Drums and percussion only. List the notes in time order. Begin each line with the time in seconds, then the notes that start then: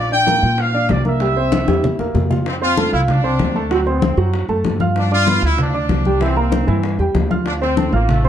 0.12 high conga
0.27 high bongo, high conga
0.43 high conga
0.58 high bongo, high conga
0.74 high conga
0.89 high bongo, low bongo, high conga
1.05 high conga
1.20 high bongo, high conga
1.37 high bongo, high conga
1.52 high bongo, high conga
1.68 high bongo, high conga
1.84 low bongo, low conga
1.99 low bongo
2.15 low bongo, low conga
2.31 low bongo, low conga
2.46 high bongo, high conga
2.62 high conga
2.77 high bongo, high conga
2.93 high conga
3.08 high bongo, high conga, low conga
3.24 high conga
3.39 high bongo, low bongo, high conga
3.71 high bongo, high conga
3.87 high bongo, high conga
4.02 high bongo, high conga
4.18 high bongo, high conga
4.34 high bongo, high conga
4.49 high bongo, high conga
4.64 high bongo, low bongo, high conga
4.80 high conga
4.96 high bongo, high conga
5.12 high conga
5.27 high bongo, high conga
5.43 high conga
5.58 high bongo, high conga, low conga
5.74 high conga
5.89 high bongo, low bongo, high conga
6.05 high conga
6.21 high bongo, high conga
6.36 high bongo, high conga
6.52 high bongo, high conga
6.68 high bongo, high conga
6.83 high bongo, high conga
6.99 high bongo, high conga
7.15 high bongo, low bongo, high conga
7.31 high conga
7.46 high bongo, high conga
7.62 high conga
7.77 high bongo, high conga
7.93 high conga
8.09 high bongo, high conga, low conga
8.25 high conga, low conga